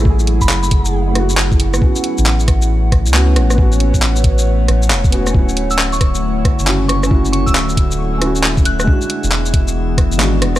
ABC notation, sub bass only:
X:1
M:4/4
L:1/16
Q:"Swing 16ths" 1/4=136
K:A
V:1 name="Sub bass" clef=bass
A,,,3 F,,,12- F,,, | z3 A,,,8 C,,3 A,,,2- | A,,,3 A,,,6- A,,, A,,,2 E,,,4 | D,,,8- D,,,2 z F,,,4- F,,,- |
F,,,3 D,,,12- D,,, | z3 E,,,8 G,,,3 E,,,2 |]